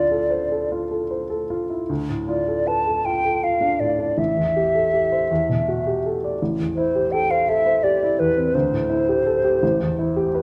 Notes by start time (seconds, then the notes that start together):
Already playing: D2 E4 F4 D5
0.11 A4
0.30 C5
0.52 A4
0.72 F4
0.91 A4
1.11 C5
1.30 A4
1.50 F4
1.70 E4
1.89 D2
2.09 A2
2.28 F4 D5
2.48 A4
2.67 B4 A5
2.87 A4
3.05 F4 G5
3.25 A4
3.43 F4 F5
3.61 D4
3.80 A2 D5
3.99 D4
4.18 A1 E5
4.37 E2
4.56 G4
4.75 A4
4.93 G4
5.12 C5
5.31 E2
5.49 B2
5.68 F#4
5.87 G4
6.06 A4
6.24 D5
6.42 A1
6.60 E2
6.76 E4 C5
6.95 G4
7.12 A4 G5
7.31 C5 F5
7.48 A4 E5
7.66 C5
7.83 G4 D5
8.03 E4
8.19 E2 B4
8.37 C4
8.55 D2 C5
8.72 A2
8.90 E4
9.09 G4
9.26 A4
9.44 G4
9.63 A1
9.80 E2
9.99 E4
10.16 G4
10.34 B4